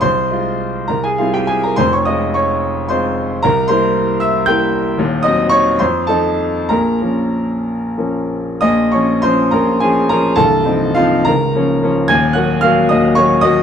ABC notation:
X:1
M:6/8
L:1/16
Q:3/8=71
K:Fm
V:1 name="Grand piano"
[cc']6 [Bb] [Aa] [Ff] [Gg] [Aa] [Bb] | [cc'] [dd'] [ee']2 [dd']4 [cc']4 | [Bb]2 [cc']4 [=e=e']2 [gg']4 | [K:Bbm] z2 [ee']2 [dd']2 [cc']2 [=A=a]4 |
[Bb]8- [Bb]2 z2 | [ee']2 [dd']2 [cc']2 [Bb]2 [Aa]2 [Bb]2 | [=A=a]4 [Ff]2 [Bb]6 | [aa']2 [gg']2 [ff']2 [ee']2 [dd']2 [ee']2 |]
V:2 name="Grand piano" clef=bass
C,,2 [A,F]4 C,,2 [G,C=E]4 | [F,,,F,,]2 [A,CF]6 [A,CF]4 | C,,2 [G,B,=E]6 [G,B,E]4 | [K:Bbm] [E,,,E,,]2 [G,CE]4 F,,2 [F,CE]4 |
[B,,,B,,]2 [F,B,D]6 [F,B,D]4 | [B,,,B,,]2 [F,D]2 [F,D]2 [B,,,B,,]2 [F,D]2 [F,D]2 | [C,,,C,,]2 [F,CE]2 [F,CE]2 [D,,,D,,]2 [F,B,D]2 [F,B,D]2 | [E,,,E,,]2 [G,B,G]2 [G,B,G]2 [E,,,E,,]2 [G,B,G]2 [G,B,G]2 |]